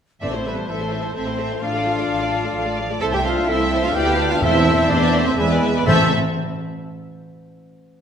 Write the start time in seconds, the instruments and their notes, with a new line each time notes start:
0.21 double bass section A1, timpani A2, french horn section B3, viola section C4 A4, cello section D4, clarinet A4, oboe C5, violin section D5 E5, trumpet section D5, flute section A5
0.32 french horn section A3, viola section A3 E4, cello section C4, violin section C5, trumpet section C5
0.45 french horn section G3, cello section B3, viola section C4 A4, trumpet section B4, violin section B4 E5
0.56 viola section A3 E4, violin section C5
0.68 double bass section A1, french horn section E3, cello section A3, viola section C4 A4, violin section A4 E5, trumpet section A4, clarinet A4, oboe C5, flute section A5
0.80 viola section A3 E4, violin section C5
0.91 viola section C4 A4, violin section E5
1.02 viola section A3 E4, violin section C5
1.14 double bass section A1, french horn section A3, viola section C4 A4, cello section C4, clarinet A4, oboe C5, trumpet section C5, violin section C5 E5, flute section A5
1.26 viola section A3 E4, violin section C5
1.38 viola section C4 A4, violin section E5
1.51 viola section A3 E4, violin section C5
1.61 double bass section A1, viola section F3 A4, french horn section D4, cello section F4, clarinet A4, oboe D5, trumpet section F5, violin section F5, flute section A5
1.73 viola section A3 F4, violin section D5
1.85 viola section F3 A4, violin section F5
1.97 viola section A3 F4, violin section D5
2.09 double bass section A1, viola section F3 A4, violin section F5
2.21 viola section A3 F4, violin section D5
2.32 viola section F3 A4, violin section F5
2.44 viola section A3 F4, violin section D5
2.56 double bass section A1, viola section F3 A4, violin section F5
2.66 viola section A3 F4, violin section D5
2.77 viola section F3 A4, violin section F5
2.90 viola section A3 F4, violin section D5
3.01 double bass section C2, viola section C4 A4, french horn section E4, clarinet A4, cello section A4, violin section C5 A5, oboe E5, flute section A5, trumpet section A5
3.13 viola section A3 C5, french horn section E4, cello section G4, violin section E5 G5, trumpet section G5
3.24 viola section C4 A4, french horn section D4, cello section F4, violin section C5 F5, trumpet section F5
3.36 viola section A3 C5, violin section E5
3.47 double bass section C2, viola section C4 A4, french horn section C4, cello section E4, clarinet A4, violin section C5 E5, oboe E5, trumpet section E5, flute section A5
3.59 viola section A3 C5, violin section E5
3.71 viola section C4 A4, violin section C5
3.82 viola section A3 C5, french horn section D4, cello section F4, violin section E5 F5, trumpet section F5
3.94 double bass section D2, viola section A3 A4, french horn section E4, cello section G4, clarinet B4, violin section D5 G5, oboe F5, trumpet section G5, flute section A5
4.07 viola section B3 B4, violin section F5
4.18 viola section A3 A4, violin section D5
4.29 viola section B3 B4, french horn section D4, cello section F4, violin section F5, trumpet section F5
4.39 double bass section E2, timpani E2, viola section A3 A4, cello section E4, violin section E5, oboe E5, trumpet section E5
4.43 french horn section C4, clarinet C5, violin section C5, flute section A5
4.54 viola section C4 C5, violin section E5
4.65 viola section A3 A4, violin section C5
4.77 viola section C4 C5, violin section E5
4.87 double bass section E2, viola section A3 A4, french horn section B3, cello section D4, violin section D5, trumpet section D5
4.91 violin section C5
5.01 viola section C4 C5, violin section E5
5.13 viola section A3 A4, violin section C5
5.24 french horn section A3, viola section C4 C5, cello section C4, trumpet section C5, violin section C5 E5
5.36 double bass section E2, viola section G#3 G#4, french horn section G#3, cello section B3, violin section B4 E5, trumpet section B4, clarinet D5, oboe E5, flute section G#5
5.48 viola section B3 B4, violin section D5
5.61 viola section G#3 G#4, violin section E5
5.74 viola section B3 B4, violin section D5
5.86 double bass section A1, timpani A2, cello section A3, french horn section A3, viola section C4 A4, trumpet section A4, clarinet C5, oboe E5, violin section E5 A5, flute section A5